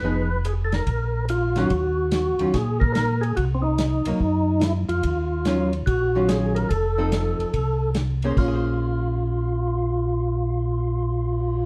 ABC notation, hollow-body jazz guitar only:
X:1
M:4/4
L:1/8
Q:"Swing" 1/4=144
K:Bbm
V:1 name="Hollow-body jazz guitar"
[F,_CEA] z6 [E,G,DF] | z3 [E,G,DF] z4 | z3 [G,B,E] z4 | z2 [E,G,DF] z2 [E,G,DF]3 |
z [F,CE=A]3 z3 [B,D_Ac] | [B,DAc]8- | [B,DAc]8 |]